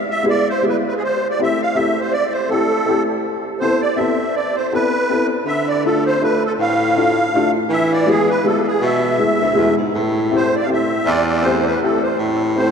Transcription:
0.11 E5
0.23 G#3 B3 E4 G#4
0.29 D5
0.49 C5
0.62 G#3 B3 E4 G#4
0.69 B4
0.88 B4
0.97 G#4
1.04 C5
1.30 D5
1.39 A3 C4 E4 G4 E5
1.62 F5
1.75 A3 C4 E4 G4 E5
2.00 C5
2.12 D5
2.32 C5
2.49 A3 C4 E4 G4 A4
2.86 A3 C4 E4 G4
3.60 B3 C4 E4 A4 C5
3.82 D5
3.96 B3 C4 E4 A4 E5
4.35 D5
4.56 C5
4.73 B3 C4 E4 A4 B4
5.09 B3 C4 E4 A4
5.46 D3 E5
5.68 D5
5.85 A3 D4 F4 A4
6.06 C5
6.21 A3 D4 F4 A4 B4
6.46 A4
6.59 A2 F5
6.96 A3 D4 F4 A4
7.35 A3 D4 F4 A4
7.70 E3 E5
7.93 D5
8.06 G#3 B3 E4 G#4
8.30 B4
8.44 G#3 B3 E4 G#4 A4
8.67 G#4
8.82 B2 E5
9.18 G#3 B3 E4 G#4
9.40 D2
9.55 E2 G#3 B3 E4 G#4
9.78 G#2
9.95 A2
10.31 A3 C4 E4 G4
10.36 C5
10.56 D5
10.63 A3 C4 F5
10.68 E4 G4
10.73 E5
11.06 E2 D5
11.27 D5
11.42 A3 C4 E4 G4 C5
11.59 C5
11.66 B4
11.82 A3 C4 E4 G4 A4
12.02 C5
12.19 A2
12.56 A3 C4 E4 A4 C5

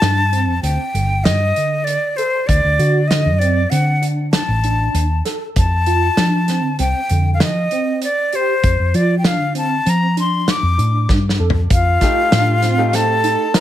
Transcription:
Already playing: A5
0.02 G2 D4, snare, closed hi-hat
0.32 C4, closed hi-hat
0.48 F2
0.63 D2 C4 G5, closed hi-hat
0.94 G1 D3, closed hi-hat
1.24 G2 D#5, snare, closed hi-hat
1.56 D3, closed hi-hat
1.84 D5, closed hi-hat
2.17 A4 C5, closed hi-hat
2.47 D2 D5, kick, closed hi-hat
2.64 D2
2.79 D3 F#4, closed hi-hat
3.08 D3 D#5, snare, closed hi-hat
3.26 F#2
3.39 C4 D5, closed hi-hat
3.70 D3 C4 F#5, closed hi-hat
4.02 D4, closed hi-hat
4.32 A5, snare, closed hi-hat
4.48 A1
4.64 D4, closed hi-hat
4.94 D#2, closed hi-hat
5.25 A4, snare, closed hi-hat
5.56 F2 A5, kick, closed hi-hat
5.86 F4, closed hi-hat
6.17 F3 D4, snare, closed hi-hat
6.48 C4, snare, closed hi-hat
6.64 D3
6.79 C2 C4 G5, closed hi-hat
7.09 F2 D3, closed hi-hat
7.34 F5
7.40 F3 D#5, snare, closed hi-hat
7.71 C4, closed hi-hat
8.02 D5, closed hi-hat
8.33 G4 C5, closed hi-hat
8.63 F2, kick, closed hi-hat
8.80 F2
8.94 F3 F4 D5, closed hi-hat
9.18 G5
9.24 D4 F5, snare, closed hi-hat
9.40 D3
9.55 C4 A5, closed hi-hat
9.85 F3 C4, closed hi-hat
9.90 A#5
10.17 D4 C6, closed hi-hat
10.48 D6, snare, closed hi-hat
10.63 F2
10.78 A2 D4, closed hi-hat
11.09 G2, kick, snare
11.29 snare
11.40 F2 A4
11.50 floor tom
11.70 F2 F4 F5, kick, closed hi-hat
12.01 A3 D#4 F4 G4, kick, snare, closed hi-hat
12.31 A2 D4, snare, closed hi-hat
12.62 C4, snare, closed hi-hat
12.78 A3 D#4 G4
12.93 C4 A4 A5, snare, closed hi-hat
13.24 D#4, closed hi-hat
13.53 C4 D#4 F4 A#4 A#5, snare, closed hi-hat

